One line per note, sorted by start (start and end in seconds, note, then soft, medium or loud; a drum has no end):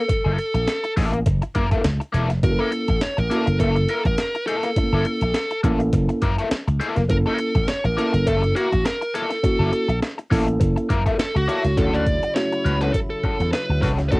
0.00 0.93 A4 medium
0.08 muted overdriven electric guitar stroke soft
0.08 kick loud
0.08 closed hi-hat medium
0.25 0.37 F#1 loud
0.25 0.37 A#3 medium
0.25 0.37 E4 medium
0.25 0.38 A4 medium
0.38 muted overdriven electric guitar stroke soft
0.38 closed hi-hat medium
0.54 0.66 A#1 medium
0.54 muted overdriven electric guitar stroke soft
0.54 closed hi-hat medium
0.68 snare medium
0.68 closed hi-hat medium
0.84 muted overdriven electric guitar stroke soft
0.84 closed hi-hat soft
0.96 1.22 A1 medium
0.96 1.18 A#3 medium
0.96 1.13 E4 medium
0.96 1.12 A4 medium
0.96 kick medium
0.96 open hi-hat medium
1.13 muted overdriven electric guitar stroke soft
1.13 closed hi-hat soft
1.26 1.40 F#1 loud
1.26 muted overdriven electric guitar stroke soft
1.26 kick medium
1.26 closed hi-hat medium
1.42 muted overdriven electric guitar stroke soft
1.42 closed hi-hat soft
1.55 1.69 F#2 loud
1.55 1.66 A#3 medium
1.55 1.67 E4 medium
1.55 1.67 A#4 medium
1.55 kick loud
1.55 closed hi-hat medium
1.71 1.81 A#3 medium
1.71 1.81 E4 medium
1.71 1.80 A4 medium
1.71 kick medium
1.71 closed hi-hat soft
1.84 1.99 C#2 loud
1.84 muted overdriven electric guitar stroke soft
1.84 snare loud
1.84 closed hi-hat medium
2.00 muted overdriven electric guitar stroke medium
2.00 closed hi-hat soft
2.12 2.30 E1 medium
2.12 2.28 A#3 medium
2.12 2.28 E4 medium
2.12 2.28 A4 medium
2.12 closed hi-hat medium
2.30 2.41 F1 medium
2.30 muted overdriven electric guitar stroke soft
2.30 snare soft
2.30 closed hi-hat soft
2.43 2.57 F#1 loud
2.43 2.86 A#3 medium
2.43 2.87 C#4 medium
2.43 2.87 E4 medium
2.43 2.51 F#4 medium
2.43 2.60 A#4 loud
2.43 muted overdriven electric guitar stroke soft
2.43 kick loud
2.43 closed hi-hat medium
2.50 2.90 A4 medium
2.59 2.71 A#3 medium
2.59 2.71 E4 medium
2.59 3.03 A4 medium
2.59 2.71 A#4 medium
2.72 muted overdriven electric guitar stroke soft
2.72 closed hi-hat medium
2.88 3.00 A1 medium
2.88 muted overdriven electric guitar stroke soft
2.88 kick medium
2.88 closed hi-hat soft
3.01 3.18 C#5 loud
3.01 snare loud
3.01 closed hi-hat medium
3.17 3.29 A1 medium
3.17 3.60 A#4 loud
3.17 muted overdriven electric guitar stroke soft
3.17 closed hi-hat soft
3.30 3.45 A#3 medium
3.30 3.87 A#3 medium
3.30 3.87 C#4 medium
3.30 3.45 E4 medium
3.30 3.87 E4 medium
3.30 3.38 F#4 medium
3.30 3.46 A4 medium
3.30 closed hi-hat medium
3.38 3.90 A4 medium
3.47 3.58 F#1 medium
3.47 muted overdriven electric guitar stroke medium
3.47 closed hi-hat medium
3.60 3.85 F#1 loud
3.60 3.74 A#3 medium
3.60 3.75 E4 medium
3.60 4.02 A4 medium
3.60 3.75 A4 medium
3.60 kick medium
3.60 closed hi-hat loud
3.76 muted overdriven electric guitar stroke soft
3.76 closed hi-hat soft
3.89 4.00 A#3 medium
3.89 4.01 E4 medium
3.89 4.01 A#4 medium
3.89 closed hi-hat medium
4.05 4.16 A1 medium
4.05 4.47 A#4 loud
4.05 muted overdriven electric guitar stroke soft
4.05 kick medium
4.05 closed hi-hat soft
4.18 snare loud
4.18 closed hi-hat medium
4.35 muted overdriven electric guitar stroke medium
4.35 closed hi-hat soft
4.47 4.68 A#3 medium
4.47 4.64 E4 medium
4.47 5.60 A4 medium
4.47 4.63 A4 medium
4.47 closed hi-hat medium
4.63 4.70 E4 medium
4.63 4.70 A4 medium
4.63 muted overdriven electric guitar stroke soft
4.63 snare soft
4.63 closed hi-hat medium
4.76 4.84 A3 medium
4.76 5.20 C#4 medium
4.76 5.20 E4 medium
4.76 5.20 A4 medium
4.76 muted overdriven electric guitar stroke soft
4.76 kick loud
4.76 closed hi-hat medium
4.83 5.23 A#3 medium
4.93 5.04 F#1 medium
4.93 5.04 A#3 medium
4.93 5.05 E4 medium
4.93 5.04 A4 medium
5.05 muted overdriven electric guitar stroke soft
5.05 closed hi-hat medium
5.21 5.33 A#1 medium
5.21 muted overdriven electric guitar stroke soft
5.21 closed hi-hat medium
5.34 snare loud
5.34 closed hi-hat medium
5.51 muted overdriven electric guitar stroke soft
5.51 closed hi-hat soft
5.63 5.89 A1 medium
5.63 5.78 A#3 medium
5.63 6.20 A#3 loud
5.63 6.20 C#4 loud
5.63 5.79 E4 medium
5.63 6.21 E4 medium
5.63 6.21 A4 loud
5.63 5.79 A4 medium
5.63 kick loud
5.63 closed hi-hat medium
5.80 muted overdriven electric guitar stroke soft
5.80 closed hi-hat medium
5.93 6.07 F#1 loud
5.93 muted overdriven electric guitar stroke soft
5.93 kick medium
5.93 closed hi-hat loud
6.09 muted overdriven electric guitar stroke soft
6.09 closed hi-hat soft
6.22 6.36 F#2 loud
6.22 6.34 A#3 medium
6.22 6.34 E4 medium
6.22 6.34 A#4 medium
6.22 kick loud
6.22 closed hi-hat medium
6.38 6.48 A#3 medium
6.38 6.48 E4 medium
6.38 6.48 A4 medium
6.38 closed hi-hat medium
6.51 muted overdriven electric guitar stroke soft
6.51 muted slap bass stroke soft
6.51 snare loud
6.51 closed hi-hat medium
6.68 6.79 C#2 medium
6.68 muted overdriven electric guitar stroke medium
6.68 closed hi-hat soft
6.80 7.01 A#3 medium
6.80 6.96 E4 medium
6.80 6.95 A4 loud
6.80 closed hi-hat medium
6.96 7.10 F1 medium
6.96 7.03 E4 medium
6.96 7.03 A4 medium
6.96 muted overdriven electric guitar stroke soft
6.96 snare soft
6.96 closed hi-hat soft
7.09 7.24 F#1 loud
7.09 7.53 A#3 medium
7.09 7.53 C#4 medium
7.09 7.53 E4 medium
7.09 7.54 A4 medium
7.09 7.16 A#4 loud
7.09 muted overdriven electric guitar stroke soft
7.09 kick loud
7.09 closed hi-hat medium
7.26 7.38 A#3 medium
7.26 7.38 E4 medium
7.26 7.68 A4 loud
7.26 7.39 A#4 medium
7.38 muted overdriven electric guitar stroke soft
7.38 closed hi-hat medium
7.55 7.67 A1 medium
7.55 muted overdriven electric guitar stroke soft
7.55 kick medium
7.55 closed hi-hat soft
7.68 7.85 C#5 loud
7.68 snare loud
7.68 closed hi-hat medium
7.84 7.96 A1 medium
7.84 7.97 A#4 medium
7.84 muted overdriven electric guitar stroke medium
7.84 closed hi-hat soft
7.97 8.12 A#3 medium
7.97 8.54 A#3 medium
7.97 8.54 C#4 medium
7.97 8.12 E4 medium
7.97 8.54 E4 medium
7.97 8.54 A4 loud
7.97 8.12 A4 medium
7.97 8.28 A#4 loud
7.97 closed hi-hat medium
8.13 8.25 F#1 medium
8.13 muted overdriven electric guitar stroke medium
8.13 closed hi-hat medium
8.26 8.52 F#1 loud
8.26 8.41 A#3 medium
8.26 8.42 E4 medium
8.26 8.56 A4 loud
8.26 8.41 A4 medium
8.26 kick medium
8.26 closed hi-hat loud
8.43 muted overdriven electric guitar stroke soft
8.43 closed hi-hat soft
8.55 8.67 A#3 medium
8.55 8.68 E4 medium
8.55 8.86 F#4 medium
8.55 8.68 A#4 medium
8.55 closed hi-hat medium
8.72 8.83 A1 medium
8.72 muted overdriven electric guitar stroke medium
8.72 kick medium
8.72 closed hi-hat medium
8.85 9.15 A#4 medium
8.85 snare loud
8.85 closed hi-hat medium
9.01 muted overdriven electric guitar stroke soft
9.01 closed hi-hat soft
9.14 9.29 A#3 medium
9.14 9.29 E4 medium
9.14 9.98 A4 medium
9.14 9.29 A4 loud
9.14 closed hi-hat medium
9.31 9.37 E4 medium
9.31 9.37 A4 medium
9.31 muted overdriven electric guitar stroke medium
9.31 snare soft
9.31 closed hi-hat medium
9.43 9.87 A#3 medium
9.43 9.87 C#4 medium
9.43 9.87 E4 medium
9.43 9.87 F#4 medium
9.43 muted overdriven electric guitar stroke soft
9.43 kick loud
9.43 closed hi-hat medium
9.59 9.71 F#1 loud
9.59 9.71 A#3 medium
9.59 9.71 E4 medium
9.59 9.71 A4 medium
9.72 muted overdriven electric guitar stroke soft
9.72 closed hi-hat medium
9.88 10.00 A#1 loud
9.88 muted overdriven electric guitar stroke medium
9.88 closed hi-hat soft
10.03 snare loud
10.03 closed hi-hat medium
10.18 muted overdriven electric guitar stroke soft
10.18 closed hi-hat soft
10.30 10.57 A1 medium
10.30 10.45 A#3 medium
10.30 10.87 A#3 medium
10.30 10.87 C#4 medium
10.30 10.46 E4 medium
10.30 10.88 E4 medium
10.30 10.46 A4 medium
10.30 10.88 A4 loud
10.30 kick loud
10.30 open hi-hat medium
10.47 muted overdriven electric guitar stroke soft
10.47 closed hi-hat soft
10.60 10.75 F#1 loud
10.60 muted overdriven electric guitar stroke soft
10.60 kick medium
10.60 closed hi-hat loud
10.76 muted overdriven electric guitar stroke soft
10.76 closed hi-hat soft
10.89 11.04 F#2 loud
10.89 11.01 A#3 medium
10.89 11.01 E4 medium
10.89 11.02 A#4 medium
10.89 kick medium
10.89 closed hi-hat medium
11.06 11.16 A#3 medium
11.06 11.15 E4 medium
11.06 11.15 A4 medium
11.06 kick medium
11.06 closed hi-hat soft
11.19 11.46 A4 medium
11.19 11.36 A4 medium
11.19 muted overdriven electric guitar stroke soft
11.19 muted slap bass stroke soft
11.19 snare loud
11.19 closed hi-hat loud
11.35 11.46 C#2 medium
11.35 11.48 F#4 medium
11.35 muted overdriven electric guitar stroke soft
11.35 closed hi-hat soft
11.48 11.62 A#3 medium
11.48 11.63 E4 loud
11.48 11.79 F#4 loud
11.48 11.63 A4 medium
11.48 11.75 C#5 medium
11.48 closed hi-hat medium
11.64 11.75 C#2 medium
11.64 11.70 E4 medium
11.64 11.71 A4 medium
11.64 muted overdriven electric guitar stroke soft
11.64 snare soft
11.64 closed hi-hat medium
11.77 12.17 D2 medium
11.77 14.20 C#3 medium
11.77 14.20 F#3 medium
11.77 12.05 A3 medium
11.77 12.04 C#4 medium
11.77 12.05 C#4 medium
11.77 12.05 E4 medium
11.77 14.20 E4 medium
11.77 12.06 F#4 medium
11.77 12.05 F#4 medium
11.77 11.94 A4 loud
11.77 12.05 A4 medium
11.77 kick loud
11.77 closed hi-hat medium
11.94 12.34 D5 medium
11.94 closed hi-hat soft
12.06 kick medium
12.06 closed hi-hat medium
12.23 muted overdriven electric guitar stroke soft
12.23 closed hi-hat medium
12.35 12.92 A3 medium
12.35 12.92 C#4 medium
12.35 12.92 E4 medium
12.35 12.92 F#4 medium
12.35 12.82 C#5 loud
12.35 muted overdriven electric guitar stroke soft
12.35 snare loud
12.35 closed hi-hat medium
12.52 muted overdriven electric guitar stroke soft
12.52 closed hi-hat soft
12.65 12.90 C#2 medium
12.65 12.76 C#4 medium
12.65 12.77 F#4 medium
12.65 12.77 B4 medium
12.65 closed hi-hat medium
12.81 12.91 C#4 soft
12.81 12.91 F#4 soft
12.81 12.90 A4 medium
12.81 12.93 B4 loud
12.81 closed hi-hat soft
12.93 12.98 A4 loud
12.93 muted overdriven electric guitar stroke soft
12.93 kick medium
12.93 closed hi-hat loud
13.10 13.49 A4 medium
13.23 13.35 C#4 medium
13.23 13.35 F#4 soft
13.23 13.36 A4 medium
13.23 muted slap bass stroke soft
13.23 kick loud
13.23 closed hi-hat medium
13.40 13.51 E2 medium
13.40 muted overdriven electric guitar stroke medium
13.40 closed hi-hat soft
13.53 13.81 B4 medium
13.53 muted overdriven electric guitar stroke soft
13.53 snare loud
13.53 closed hi-hat medium
13.69 13.82 D2 medium
13.69 muted overdriven electric guitar stroke soft
13.82 13.98 C2 medium
13.82 13.97 C#4 medium
13.82 13.97 F#4 loud
13.82 13.98 A4 loud
13.82 13.89 B4 loud
13.82 kick medium
13.82 open hi-hat medium
13.98 14.09 C#2 medium
13.98 muted overdriven electric guitar stroke soft
13.98 snare soft
13.98 closed hi-hat soft
14.09 14.20 D2 loud
14.09 14.20 A3 medium
14.09 14.20 C#4 medium
14.09 14.20 E4 medium
14.09 14.20 F#4 medium
14.09 14.20 A4 medium
14.09 14.11 B4 medium
14.09 kick loud
14.09 closed hi-hat medium
14.13 14.20 F#4 medium
14.13 14.20 A4 medium